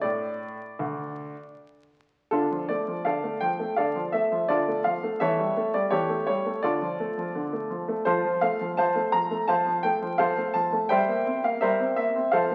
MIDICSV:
0, 0, Header, 1, 2, 480
1, 0, Start_track
1, 0, Key_signature, -1, "minor"
1, 0, Tempo, 764331
1, 1457, Time_signature, 4, 2, 24, 8
1, 1457, Tempo, 729040
1, 1937, Tempo, 719424
1, 4337, Tempo, 710900
1, 8323, End_track
2, 0, Start_track
2, 0, Title_t, "Grand piano"
2, 0, Program_c, 0, 0
2, 9, Note_on_c, 0, 74, 71
2, 16, Note_on_c, 0, 45, 54
2, 353, Note_off_c, 0, 45, 0
2, 498, Note_on_c, 0, 38, 56
2, 835, Note_off_c, 0, 38, 0
2, 975, Note_off_c, 0, 74, 0
2, 1451, Note_on_c, 0, 69, 74
2, 1457, Note_on_c, 0, 50, 52
2, 1459, Note_on_c, 0, 62, 51
2, 1459, Note_on_c, 0, 65, 53
2, 1574, Note_off_c, 0, 50, 0
2, 1582, Note_on_c, 0, 53, 37
2, 1670, Note_off_c, 0, 69, 0
2, 1682, Note_off_c, 0, 62, 0
2, 1682, Note_off_c, 0, 65, 0
2, 1698, Note_on_c, 0, 74, 64
2, 1704, Note_on_c, 0, 57, 41
2, 1706, Note_off_c, 0, 53, 0
2, 1823, Note_on_c, 0, 53, 36
2, 1827, Note_off_c, 0, 57, 0
2, 1913, Note_off_c, 0, 74, 0
2, 1936, Note_on_c, 0, 77, 68
2, 1942, Note_on_c, 0, 50, 42
2, 1943, Note_on_c, 0, 74, 48
2, 1944, Note_on_c, 0, 69, 52
2, 1946, Note_off_c, 0, 53, 0
2, 2057, Note_off_c, 0, 50, 0
2, 2061, Note_on_c, 0, 57, 41
2, 2165, Note_off_c, 0, 69, 0
2, 2165, Note_off_c, 0, 74, 0
2, 2174, Note_on_c, 0, 79, 70
2, 2177, Note_off_c, 0, 77, 0
2, 2181, Note_on_c, 0, 53, 42
2, 2186, Note_off_c, 0, 57, 0
2, 2301, Note_on_c, 0, 57, 40
2, 2306, Note_off_c, 0, 53, 0
2, 2392, Note_off_c, 0, 79, 0
2, 2414, Note_on_c, 0, 77, 69
2, 2422, Note_on_c, 0, 74, 51
2, 2423, Note_on_c, 0, 50, 42
2, 2424, Note_on_c, 0, 69, 53
2, 2426, Note_off_c, 0, 57, 0
2, 2537, Note_off_c, 0, 50, 0
2, 2540, Note_on_c, 0, 53, 40
2, 2632, Note_off_c, 0, 77, 0
2, 2644, Note_off_c, 0, 74, 0
2, 2645, Note_off_c, 0, 69, 0
2, 2654, Note_on_c, 0, 76, 68
2, 2661, Note_on_c, 0, 57, 38
2, 2665, Note_off_c, 0, 53, 0
2, 2783, Note_on_c, 0, 53, 38
2, 2786, Note_off_c, 0, 57, 0
2, 2895, Note_on_c, 0, 74, 75
2, 2896, Note_off_c, 0, 76, 0
2, 2902, Note_on_c, 0, 50, 49
2, 2904, Note_on_c, 0, 65, 54
2, 2904, Note_on_c, 0, 69, 53
2, 2907, Note_off_c, 0, 53, 0
2, 3017, Note_off_c, 0, 50, 0
2, 3023, Note_on_c, 0, 57, 35
2, 3124, Note_off_c, 0, 69, 0
2, 3125, Note_off_c, 0, 65, 0
2, 3133, Note_on_c, 0, 77, 73
2, 3137, Note_off_c, 0, 74, 0
2, 3141, Note_on_c, 0, 53, 38
2, 3147, Note_off_c, 0, 57, 0
2, 3261, Note_on_c, 0, 57, 42
2, 3266, Note_off_c, 0, 53, 0
2, 3372, Note_on_c, 0, 76, 82
2, 3375, Note_off_c, 0, 77, 0
2, 3379, Note_off_c, 0, 57, 0
2, 3379, Note_on_c, 0, 69, 57
2, 3379, Note_on_c, 0, 73, 61
2, 3380, Note_on_c, 0, 52, 55
2, 3495, Note_off_c, 0, 52, 0
2, 3498, Note_on_c, 0, 55, 40
2, 3617, Note_on_c, 0, 57, 44
2, 3623, Note_off_c, 0, 55, 0
2, 3706, Note_off_c, 0, 76, 0
2, 3711, Note_off_c, 0, 69, 0
2, 3711, Note_off_c, 0, 73, 0
2, 3732, Note_on_c, 0, 55, 39
2, 3733, Note_on_c, 0, 74, 67
2, 3742, Note_off_c, 0, 57, 0
2, 3842, Note_on_c, 0, 73, 69
2, 3849, Note_on_c, 0, 67, 57
2, 3850, Note_on_c, 0, 52, 49
2, 3851, Note_on_c, 0, 69, 53
2, 3854, Note_off_c, 0, 74, 0
2, 3860, Note_off_c, 0, 55, 0
2, 3969, Note_off_c, 0, 52, 0
2, 3969, Note_on_c, 0, 57, 40
2, 4073, Note_off_c, 0, 73, 0
2, 4076, Note_off_c, 0, 67, 0
2, 4077, Note_off_c, 0, 69, 0
2, 4083, Note_on_c, 0, 73, 69
2, 4091, Note_on_c, 0, 55, 46
2, 4099, Note_off_c, 0, 57, 0
2, 4213, Note_on_c, 0, 57, 42
2, 4220, Note_off_c, 0, 55, 0
2, 4323, Note_on_c, 0, 74, 75
2, 4330, Note_off_c, 0, 73, 0
2, 4331, Note_on_c, 0, 50, 52
2, 4332, Note_on_c, 0, 65, 57
2, 4332, Note_on_c, 0, 69, 57
2, 4335, Note_off_c, 0, 57, 0
2, 4450, Note_off_c, 0, 50, 0
2, 4452, Note_on_c, 0, 53, 41
2, 4575, Note_on_c, 0, 57, 40
2, 4580, Note_off_c, 0, 53, 0
2, 4695, Note_on_c, 0, 53, 41
2, 4701, Note_off_c, 0, 57, 0
2, 4814, Note_on_c, 0, 50, 50
2, 4821, Note_off_c, 0, 53, 0
2, 4931, Note_off_c, 0, 50, 0
2, 4934, Note_on_c, 0, 57, 37
2, 5050, Note_on_c, 0, 53, 43
2, 5061, Note_off_c, 0, 57, 0
2, 5172, Note_on_c, 0, 57, 42
2, 5180, Note_off_c, 0, 53, 0
2, 5268, Note_off_c, 0, 65, 0
2, 5268, Note_off_c, 0, 69, 0
2, 5286, Note_on_c, 0, 72, 75
2, 5291, Note_off_c, 0, 74, 0
2, 5293, Note_on_c, 0, 53, 58
2, 5293, Note_on_c, 0, 65, 58
2, 5293, Note_on_c, 0, 69, 57
2, 5295, Note_off_c, 0, 57, 0
2, 5406, Note_off_c, 0, 53, 0
2, 5416, Note_on_c, 0, 53, 44
2, 5520, Note_off_c, 0, 69, 0
2, 5521, Note_off_c, 0, 65, 0
2, 5530, Note_on_c, 0, 77, 80
2, 5534, Note_off_c, 0, 72, 0
2, 5536, Note_on_c, 0, 57, 47
2, 5544, Note_off_c, 0, 53, 0
2, 5661, Note_on_c, 0, 53, 45
2, 5665, Note_off_c, 0, 57, 0
2, 5769, Note_off_c, 0, 53, 0
2, 5769, Note_off_c, 0, 77, 0
2, 5773, Note_on_c, 0, 81, 76
2, 5779, Note_on_c, 0, 53, 47
2, 5779, Note_on_c, 0, 77, 59
2, 5780, Note_on_c, 0, 72, 63
2, 5896, Note_on_c, 0, 57, 47
2, 5897, Note_off_c, 0, 53, 0
2, 5919, Note_off_c, 0, 81, 0
2, 6003, Note_off_c, 0, 72, 0
2, 6003, Note_off_c, 0, 77, 0
2, 6009, Note_on_c, 0, 82, 82
2, 6015, Note_on_c, 0, 53, 44
2, 6024, Note_off_c, 0, 57, 0
2, 6135, Note_on_c, 0, 57, 41
2, 6144, Note_off_c, 0, 53, 0
2, 6247, Note_on_c, 0, 81, 81
2, 6254, Note_off_c, 0, 82, 0
2, 6254, Note_on_c, 0, 53, 48
2, 6254, Note_on_c, 0, 77, 56
2, 6256, Note_on_c, 0, 72, 59
2, 6263, Note_off_c, 0, 57, 0
2, 6364, Note_off_c, 0, 53, 0
2, 6374, Note_on_c, 0, 53, 46
2, 6479, Note_off_c, 0, 77, 0
2, 6480, Note_off_c, 0, 72, 0
2, 6486, Note_on_c, 0, 79, 78
2, 6493, Note_off_c, 0, 81, 0
2, 6495, Note_on_c, 0, 57, 46
2, 6502, Note_off_c, 0, 53, 0
2, 6614, Note_on_c, 0, 53, 44
2, 6622, Note_off_c, 0, 57, 0
2, 6721, Note_off_c, 0, 53, 0
2, 6723, Note_on_c, 0, 77, 82
2, 6730, Note_off_c, 0, 79, 0
2, 6731, Note_on_c, 0, 69, 66
2, 6731, Note_on_c, 0, 72, 70
2, 6732, Note_on_c, 0, 53, 51
2, 6849, Note_off_c, 0, 53, 0
2, 6854, Note_on_c, 0, 57, 41
2, 6955, Note_off_c, 0, 69, 0
2, 6955, Note_off_c, 0, 72, 0
2, 6964, Note_on_c, 0, 81, 76
2, 6967, Note_off_c, 0, 77, 0
2, 6969, Note_on_c, 0, 53, 43
2, 6980, Note_off_c, 0, 57, 0
2, 7091, Note_on_c, 0, 57, 45
2, 7097, Note_off_c, 0, 53, 0
2, 7203, Note_on_c, 0, 79, 84
2, 7209, Note_off_c, 0, 81, 0
2, 7211, Note_on_c, 0, 55, 62
2, 7211, Note_on_c, 0, 76, 69
2, 7212, Note_off_c, 0, 57, 0
2, 7212, Note_on_c, 0, 72, 68
2, 7329, Note_off_c, 0, 55, 0
2, 7332, Note_on_c, 0, 58, 43
2, 7453, Note_on_c, 0, 60, 52
2, 7460, Note_off_c, 0, 58, 0
2, 7543, Note_off_c, 0, 79, 0
2, 7548, Note_off_c, 0, 76, 0
2, 7549, Note_off_c, 0, 72, 0
2, 7571, Note_on_c, 0, 58, 45
2, 7575, Note_on_c, 0, 77, 77
2, 7581, Note_off_c, 0, 60, 0
2, 7687, Note_on_c, 0, 76, 74
2, 7694, Note_on_c, 0, 55, 52
2, 7694, Note_on_c, 0, 72, 65
2, 7695, Note_on_c, 0, 70, 65
2, 7696, Note_off_c, 0, 77, 0
2, 7700, Note_off_c, 0, 58, 0
2, 7812, Note_off_c, 0, 55, 0
2, 7814, Note_on_c, 0, 60, 47
2, 7834, Note_off_c, 0, 76, 0
2, 7919, Note_off_c, 0, 72, 0
2, 7920, Note_off_c, 0, 70, 0
2, 7927, Note_on_c, 0, 76, 81
2, 7936, Note_on_c, 0, 58, 47
2, 7942, Note_off_c, 0, 60, 0
2, 8057, Note_on_c, 0, 60, 45
2, 8063, Note_off_c, 0, 58, 0
2, 8148, Note_off_c, 0, 76, 0
2, 8165, Note_on_c, 0, 77, 84
2, 8174, Note_on_c, 0, 53, 58
2, 8174, Note_on_c, 0, 69, 66
2, 8175, Note_on_c, 0, 72, 63
2, 8178, Note_off_c, 0, 60, 0
2, 8292, Note_off_c, 0, 53, 0
2, 8297, Note_on_c, 0, 57, 48
2, 8323, Note_off_c, 0, 57, 0
2, 8323, Note_off_c, 0, 69, 0
2, 8323, Note_off_c, 0, 72, 0
2, 8323, Note_off_c, 0, 77, 0
2, 8323, End_track
0, 0, End_of_file